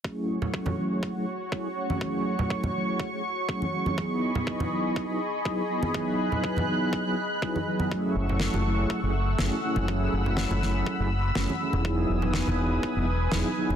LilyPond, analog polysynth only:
\new Staff \with { instrumentName = "Analog polysynth" } { \time 4/4 \key fis \dorian \tempo 4 = 122 <fis a cis' e' gis'>8. <fis a cis' e' a'>8. <fis a cis' e' gis'>8. <fis a cis' e' gis'>16 r8 <fis a cis' e' gis'>16 r16 <fis a cis' e' gis'>8 | <fis a cis' e' gis'>8. <fis a cis' e' a'>8. <fis a cis' e' gis'>8. <fis a cis' e' gis'>16 r8 <fis a cis' e' gis'>16 r16 <fis a cis' e' gis'>8 | <fis b dis' e' gis'>8. <fis b dis' e' b'>8. <fis b dis' e' gis'>8. <fis b dis' e' gis'>16 r8 <fis b dis' e' gis'>16 r16 <fis b dis' e' gis'>8 | <fis b dis' e' gis'>8. <fis b dis' e' b'>8. <fis b dis' e' gis'>8. <fis b dis' e' gis'>16 r8 <fis b dis' e' gis'>16 r16 <fis b dis' e' gis'>8 |
<fis a cis' e' gis'>8. <fis a cis' e' a'>8. <fis a cis' e' gis'>8. <fis a cis' e' gis'>16 r8 <fis a cis' e' gis'>16 r16 <fis a cis' e' gis'>8 | <fis a cis' e' gis'>8. <fis a cis' e' a'>8. <fis a cis' e' gis'>8. <fis a cis' e' gis'>16 r8 <fis a cis' e' gis'>16 r16 <fis a cis' e' gis'>8 | <fis b dis' e' gis'>8. <fis b dis' e' b'>8. <fis b dis' e' gis'>8. <fis b dis' e' gis'>16 r8 <fis b dis' e' gis'>16 r16 <fis b dis' e' gis'>8 | }